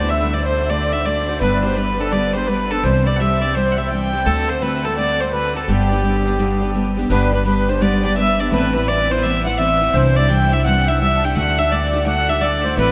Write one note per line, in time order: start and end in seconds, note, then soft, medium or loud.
0.00 1.38 D2 medium
0.00 0.21 D3 medium
0.00 0.21 A3 medium
0.00 0.20 D4 medium
0.00 0.20 F#4 medium
0.00 0.11 D5 loud
0.09 0.34 E5 medium
0.09 0.35 E5 medium
0.21 0.33 A3 soft
0.21 0.34 D4 soft
0.21 0.34 F#4 medium
0.33 0.56 D3 medium
0.33 0.57 A3 medium
0.33 0.56 D4 medium
0.33 0.55 F#4 medium
0.33 0.44 D5 medium
0.33 0.45 D5 medium
0.44 0.63 C5 medium
0.44 0.71 C5 medium
0.56 0.69 A3 soft
0.56 0.69 D4 soft
0.56 0.69 F#4 soft
0.64 0.69 E5 medium
0.68 0.92 D3 medium
0.68 0.93 A3 medium
0.68 0.93 D4 medium
0.68 0.92 F#4 medium
0.68 1.02 D5 medium
0.68 0.94 D5 loud
0.92 1.05 A3 soft
0.92 1.06 D4 soft
0.92 1.05 F#4 medium
0.92 1.07 E5 medium
1.05 1.28 D3 medium
1.05 1.29 A3 medium
1.05 1.29 D4 medium
1.05 1.27 F#4 medium
1.05 1.26 D5 medium
1.05 1.40 D5 medium
1.28 1.41 A3 soft
1.28 1.41 D4 soft
1.28 1.41 F#4 medium
1.28 1.34 C5 medium
1.35 1.41 C5 medium
1.41 2.81 G1 medium
1.41 1.64 G2 medium
1.41 1.64 D3 medium
1.41 1.64 G3 medium
1.41 1.63 B3 medium
1.41 1.63 D4 medium
1.41 1.62 G4 medium
1.41 1.75 B4 medium
1.41 1.62 B4 loud
1.63 1.75 G3 soft
1.63 1.75 B3 soft
1.63 1.76 D4 soft
1.63 1.76 G4 medium
1.63 1.78 C5 medium
1.76 1.99 G3 medium
1.76 1.99 B3 medium
1.76 1.98 D4 medium
1.76 1.98 G4 medium
1.76 1.98 B4 medium
1.76 1.94 B4 medium
1.94 2.02 B4 medium
1.99 2.11 G3 soft
1.99 2.11 B3 soft
1.99 2.12 D4 soft
1.99 2.12 G4 medium
1.99 2.13 A4 medium
1.99 2.14 A4 medium
2.12 2.35 G2 medium
2.12 2.35 D3 medium
2.12 2.35 G3 medium
2.12 2.35 B3 medium
2.12 2.35 D4 medium
2.12 2.33 G4 medium
2.12 2.35 D5 medium
2.12 2.34 D5 loud
2.35 2.47 G3 soft
2.35 2.48 B3 soft
2.35 2.48 D4 soft
2.35 2.48 G4 medium
2.35 2.49 C5 medium
2.35 2.48 C5 medium
2.47 2.71 G3 medium
2.47 2.71 B3 medium
2.47 2.70 D4 medium
2.47 2.69 G4 medium
2.47 2.71 B4 medium
2.47 2.72 B4 medium
2.71 2.84 G3 soft
2.71 2.84 B3 soft
2.71 2.84 D4 soft
2.71 2.83 G4 soft
2.71 2.85 A4 medium
2.71 2.84 A4 medium
2.83 4.23 C2 medium
2.83 3.06 C3 medium
2.83 3.07 E3 medium
2.83 3.07 G3 medium
2.83 3.06 C4 medium
2.83 3.05 G4 medium
2.83 3.08 C5 medium
2.83 3.05 C5 medium
3.06 3.19 G3 soft
3.06 3.19 C4 medium
3.06 3.19 G4 soft
3.06 3.18 D5 medium
3.06 3.20 D5 medium
3.16 3.42 E3 medium
3.16 3.40 E5 medium
3.16 3.43 E5 medium
3.16 3.21 F#5 medium
3.20 3.42 G3 medium
3.20 3.42 C4 medium
3.20 3.41 G4 medium
3.41 3.54 G3 soft
3.41 3.55 C4 soft
3.41 3.55 G4 soft
3.41 3.55 D5 medium
3.41 3.56 D5 medium
3.54 3.78 C3 medium
3.54 3.78 E3 medium
3.54 3.78 G3 medium
3.54 3.78 C4 medium
3.54 3.77 G4 medium
3.54 3.76 C5 medium
3.54 3.74 C5 loud
3.72 3.79 F#5 medium
3.77 3.90 G3 soft
3.77 3.91 C4 soft
3.77 3.90 G4 soft
3.77 3.91 E5 medium
3.77 3.89 E5 medium
3.90 4.13 E3 medium
3.90 4.13 G3 medium
3.90 4.13 C4 medium
3.90 4.12 G4 medium
3.90 4.28 G5 loud
3.90 4.27 G5 medium
4.13 4.26 G3 soft
4.13 4.26 C4 soft
4.13 4.26 G4 medium
4.26 5.65 D2 medium
4.26 4.49 D3 medium
4.26 4.49 A3 medium
4.26 4.48 C4 medium
4.26 4.47 F#4 medium
4.26 4.49 A4 medium
4.26 4.51 A4 loud
4.48 4.60 A3 soft
4.48 4.61 C4 medium
4.48 4.61 F#4 medium
4.48 4.62 C5 medium
4.48 4.64 C5 loud
4.61 4.84 D3 medium
4.61 4.84 A3 medium
4.61 4.84 C4 medium
4.61 4.83 F#4 medium
4.61 4.85 B4 medium
4.61 4.86 B4 medium
4.83 4.96 A3 soft
4.83 4.97 C4 soft
4.83 4.97 F#4 soft
4.83 4.97 A4 medium
4.83 4.96 A4 medium
4.97 5.20 D3 medium
4.97 5.20 A3 medium
4.97 5.20 C4 medium
4.97 5.19 F#4 medium
4.97 5.20 D5 medium
4.97 5.22 D5 loud
5.19 5.33 C4 soft
5.19 5.33 F#4 soft
5.19 5.32 C5 medium
5.19 5.33 C5 medium
5.23 5.33 A3 soft
5.32 5.56 D3 medium
5.32 5.56 A3 medium
5.32 5.55 C4 medium
5.32 5.54 F#4 medium
5.32 5.53 B4 medium
5.32 5.58 B4 medium
5.55 5.69 A3 soft
5.55 5.68 C4 soft
5.55 5.68 F#4 medium
5.55 5.68 A4 medium
5.55 5.62 A4 medium
5.63 5.71 A4 medium
5.67 7.07 G1 medium
5.67 5.91 G2 medium
5.67 5.91 D3 medium
5.67 5.91 G3 medium
5.67 5.91 B3 medium
5.67 5.90 D4 medium
5.67 6.70 G4 medium
5.67 6.75 G4 loud
5.67 5.90 G4 medium
5.91 6.02 G3 soft
5.91 6.03 B3 soft
5.91 6.03 D4 soft
5.91 6.04 G4 soft
6.03 6.26 G3 medium
6.03 6.26 B3 medium
6.03 6.25 D4 medium
6.03 6.24 G4 medium
6.25 6.38 G3 soft
6.25 6.38 B3 medium
6.25 6.39 D4 medium
6.25 6.39 G4 medium
6.39 6.62 G2 medium
6.39 6.62 D3 medium
6.39 6.62 G3 medium
6.39 6.62 B3 medium
6.39 6.61 D4 medium
6.39 6.60 G4 medium
6.61 6.73 G3 soft
6.61 6.74 B3 medium
6.61 6.75 D4 soft
6.61 6.74 G4 medium
6.74 6.97 G3 medium
6.74 6.97 B3 medium
6.74 6.96 D4 medium
6.74 6.96 G4 medium
6.97 7.09 G3 medium
6.97 7.10 B3 medium
6.97 7.10 D4 soft
6.97 7.10 G4 medium
7.10 8.49 G1 medium
7.10 7.33 G2 medium
7.10 7.33 D3 medium
7.10 7.33 G3 medium
7.10 7.32 B3 medium
7.10 7.32 D4 medium
7.10 7.31 G4 medium
7.10 7.31 B4 medium
7.10 7.32 B4 loud
7.32 7.43 G3 soft
7.32 7.44 B3 soft
7.32 7.45 D4 medium
7.32 7.45 G4 medium
7.32 7.43 B4 medium
7.32 7.45 B4 medium
7.45 7.68 G3 medium
7.45 7.68 B3 medium
7.45 7.68 D4 medium
7.45 7.67 G4 medium
7.45 7.69 B4 medium
7.45 7.71 B4 medium
7.68 7.80 G3 soft
7.68 7.81 B3 soft
7.68 7.81 D4 medium
7.68 7.81 G4 medium
7.68 7.81 C5 medium
7.68 7.83 C5 medium
7.81 8.03 G2 medium
7.81 8.04 D3 medium
7.81 8.04 G3 medium
7.81 8.03 B3 medium
7.81 8.03 D4 medium
7.81 8.02 G4 medium
7.81 8.02 D5 medium
7.81 8.04 D5 medium
8.03 8.15 G3 soft
8.03 8.15 B3 medium
8.03 8.17 D4 medium
8.03 8.16 G4 medium
8.03 8.15 D5 medium
8.03 8.16 D5 medium
8.15 8.39 G3 medium
8.15 8.39 B3 medium
8.15 8.38 D4 medium
8.15 8.38 G4 medium
8.15 8.52 E5 medium
8.15 8.42 E5 loud
8.39 8.52 G3 soft
8.39 8.52 B3 medium
8.39 8.52 D4 medium
8.39 8.52 G4 medium
8.39 8.52 D5 medium
8.52 9.91 A1 medium
8.52 8.75 A2 medium
8.52 8.75 E3 medium
8.52 8.75 B3 medium
8.52 8.75 C4 medium
8.52 8.74 E4 medium
8.52 8.73 B4 medium
8.52 8.73 B4 loud
8.74 8.88 B3 soft
8.74 8.88 C4 soft
8.74 8.88 E4 medium
8.74 8.88 B4 medium
8.74 8.89 B4 medium
8.87 9.10 E3 medium
8.87 9.11 B3 medium
8.87 9.11 C4 medium
8.87 9.10 E4 medium
8.87 9.08 D5 medium
8.87 9.13 D5 loud
9.10 9.24 B3 medium
9.10 9.23 C4 soft
9.10 9.23 E4 medium
9.10 9.23 C5 medium
9.10 9.24 C5 medium
9.22 9.46 A2 medium
9.22 9.46 E3 medium
9.22 9.46 B3 medium
9.22 9.46 C4 medium
9.22 9.45 E4 medium
9.22 9.46 E5 medium
9.22 9.45 E5 loud
9.45 9.59 B3 medium
9.45 9.59 C4 soft
9.45 9.59 E4 medium
9.45 9.52 F#5 medium
9.45 9.59 F#5 medium
9.53 9.58 F#5 medium
9.58 9.81 E3 medium
9.58 9.81 B3 medium
9.58 9.82 C4 medium
9.58 9.80 E4 medium
9.58 9.94 E5 loud
9.58 9.95 E5 medium
9.81 9.94 B3 medium
9.81 9.94 C4 medium
9.81 9.94 E4 medium
9.93 11.33 C2 medium
9.93 10.17 C3 medium
9.93 10.17 E3 medium
9.93 10.17 G3 loud
9.93 10.16 D4 medium
9.93 10.15 E4 medium
9.93 10.18 C5 loud
9.93 10.15 C5 medium
10.16 10.29 G3 soft
10.16 10.29 D4 medium
10.16 10.29 E4 medium
10.16 10.31 D5 loud
10.16 10.28 D5 medium
10.29 10.52 E3 medium
10.29 10.52 G3 medium
10.29 10.52 D4 medium
10.29 10.51 E4 medium
10.29 10.50 G5 medium
10.29 10.54 G5 loud
10.52 10.65 G3 soft
10.52 10.65 D4 medium
10.52 10.65 E4 medium
10.52 10.65 E5 medium
10.52 10.65 E5 loud
10.64 10.87 C3 medium
10.64 10.88 E3 medium
10.64 10.88 G3 medium
10.64 10.88 D4 medium
10.64 10.86 E4 medium
10.64 10.86 F#5 medium
10.64 10.90 F#5 loud
10.87 11.00 G3 soft
10.87 11.00 D4 soft
10.87 11.00 E4 medium
10.87 10.99 E5 medium
10.87 11.01 E5 loud
11.00 11.23 E3 medium
11.00 11.23 G3 medium
11.00 11.23 D4 medium
11.00 11.22 E4 medium
11.00 11.16 E5 medium
11.00 11.26 E5 loud
11.17 11.23 A5 medium
11.23 11.35 G3 soft
11.23 11.35 D4 medium
11.23 11.35 E4 medium
11.23 11.35 G5 medium
11.23 11.36 G5 loud
11.35 12.75 D2 medium
11.35 11.58 D3 medium
11.35 11.58 A3 medium
11.35 11.58 D4 medium
11.35 11.57 F#4 medium
11.35 11.59 F#5 medium
11.35 11.60 F#5 loud
11.58 11.71 A3 soft
11.58 11.71 D4 medium
11.58 11.71 F#4 medium
11.58 11.71 E5 loud
11.58 11.73 E5 loud
11.71 11.94 D3 medium
11.71 11.94 A3 medium
11.71 11.93 D4 medium
11.71 11.92 F#4 medium
11.71 12.07 D5 medium
11.71 12.06 D5 medium
11.93 12.05 A3 soft
11.93 12.05 D4 soft
11.93 12.06 F#4 medium
12.06 12.29 D3 medium
12.06 12.29 A3 medium
12.06 12.28 D4 medium
12.06 12.27 F#4 medium
12.06 12.30 F#5 medium
12.06 12.30 F#5 loud
12.28 12.41 A3 soft
12.28 12.41 D4 medium
12.28 12.41 F#4 medium
12.28 12.43 E5 loud
12.28 12.42 E5 medium
12.41 12.64 D3 medium
12.41 12.65 A3 medium
12.41 12.64 D4 medium
12.41 12.63 F#4 medium
12.41 12.65 D5 medium
12.41 12.77 D5 loud
12.64 12.76 A3 soft
12.64 12.77 D4 soft
12.64 12.77 F#4 medium
12.64 12.77 C5 medium
12.77 12.92 A1 medium
12.77 12.92 A2 medium
12.77 12.92 E3 medium
12.77 12.92 A3 loud
12.77 12.92 C4 medium
12.77 12.92 E4 loud
12.77 12.92 B4 medium
12.77 12.92 B4 loud